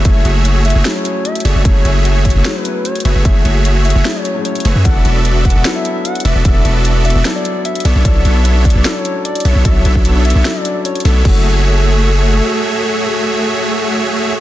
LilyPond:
<<
  \new Staff \with { instrumentName = "Soft synth lead" } { \time 4/4 \key fis \minor \tempo 4 = 150 e''8 r4 e''8 r16 cis''8. e''8 d''8 | cis''8 r4 cis''8. b'8. cis''8 b'8 | e''8 r4 e''8. cis''8 r16 cis''8 b'8 | fis''8 r4 fis''8 r16 e''8. fis''8 e''8 |
e''8 r4 e''8 r16 d''8 r16 e''8 d''8 | d''8 r4 d''8. cis''8 r16 d''8 cis''8 | e''8 r4 e''8. d''8 r16 cis''8 a'8 | a'1~ |
a'1 | }
  \new Staff \with { instrumentName = "Supersaw synth" } { \time 4/4 \key fis \minor <a gis' cis''>8 <a fis' gis' cis'' e''>4~ <a fis' gis' cis'' e''>16 <a fis' gis' cis'' e''>16 r4. <a fis' gis' cis'' e''>16 <a fis' gis' cis'' e''>16 | <a fis' gis' cis'' e''>8 <a fis' gis' cis'' e''>4~ <a fis' gis' cis'' e''>16 <a fis' gis' cis'' e''>16 r4. <a fis' gis' cis'' e''>16 <a fis' gis' cis'' e''>16 | <a fis' gis' cis'' e''>8 <a fis' gis' cis'' e''>4~ <a fis' gis' cis'' e''>16 <a fis' gis' cis'' e''>16 r4. <a fis' gis' cis'' e''>16 <a fis' gis' cis'' e''>16 | <b fis' a' d'' e''>8 <b fis' a' d'' e''>4~ <b fis' a' d'' e''>16 <b fis' a' d'' e''>16 r4. <b fis' a' d'' e''>16 <b fis' a' d'' e''>16 |
<b fis' a' d'' e''>8 <b fis' a' d'' e''>4~ <b fis' a' d'' e''>16 <b fis' a' d'' e''>16 r4. <b d' a' cis'' e''>16 <b d' a' cis'' e''>16 | r8 <b d' a' cis'' e''>4~ <b d' a' cis'' e''>16 <b d' a' cis'' e''>16 r4. <b d' a' cis'' e''>16 <b d' a' cis'' e''>16 | <d' a' cis'' e''>8 <b d' a' cis'' e''>4~ <b d' a' cis'' e''>16 <b d' a' cis'' e''>16 r4. <b d' a' cis'' e''>8 | <a fis' gis' cis''>1~ |
<a fis' gis' cis''>1 | }
  \new Staff \with { instrumentName = "Felt piano" } { \time 4/4 \key fis \minor <fis a cis' e' gis'>2 <fis a cis' e' gis'>16 r4. r16 | <fis a cis' e' gis'>2 <fis a cis' e' gis'>16 r4. r16 | <fis a cis' e' gis'>2 <fis a cis' e' gis'>16 r8 <fis a cis' e' gis'>4~ <fis a cis' e' gis'>16 | <fis b d' e' a'>2 <fis b d' e' a'>16 r4. r16 |
<fis b d' e' a'>2 <fis b d' e' a'>16 r4. r16 | <fis d' e' a' cis''>2 <fis cis' d' e' a'>16 r4. r16 | <fis d' e' a' cis''>2 <fis cis' d' e' a'>16 r4. r16 | <fis a cis' e' fis'>1~ |
<fis a cis' e' fis'>1 | }
  \new Staff \with { instrumentName = "808-style bass" } { \clef bass \time 4/4 \key fis \minor fis,,8 fis,,4~ fis,,16 fis,,16 r4. fis,,16 fis,,16 | fis,,8 fis,,4~ fis,,16 fis,,16 r4. fis,,16 fis,,16 | fis,,8 fis,,4~ fis,,16 fis,,16 r4. fis,,16 fis,16 | e,,8 e,,4~ e,,16 e,,16 r4. e,,16 e,,16 |
e,,8 e,,4~ e,,16 e,,16 r4. b,,16 b,,16 | r8 b,,4~ b,,16 b,,16 r4. b,,16 b,,16 | r8 b,,4~ b,,16 b,,16 r4. b,,8 | fis,,2. r4 |
r1 | }
  \new DrumStaff \with { instrumentName = "Drums" } \drummode { \time 4/4 <hh bd>8 hh8 hh8 hh32 hh16. <hh sn>8 hh8 hh16 hh32 hh32 hho8 | <hh bd>8 hh8 hh8 <hh bd>32 hh16. <hh sn>8 hh8 hh16 hh32 hh32 hho8 | <hh bd>8 hh8 hh8 hh32 hh16. <hh sn>8 hh8 hh16 hh32 hh32 hho8 | <hh bd>8 hh8 hh8 <hh bd>32 hh16. <hh sn>8 hh8 hh16 hh32 hh32 hho8 |
<hh bd>8 hh8 hh8 hh32 hh16. <hh sn>8 hh8 hh16 hh32 hh32 hho8 | <hh bd>8 hh8 hh8 <hh bd>32 hh16. <hh sn>8 hh8 hh16 hh32 hh32 hho8 | <hh bd>8 hh16 bd16 hh8 hh32 hh16. <hh sn>8 hh8 hh16 hh32 hh32 hho8 | <cymc bd>4 r4 r4 r4 |
r4 r4 r4 r4 | }
>>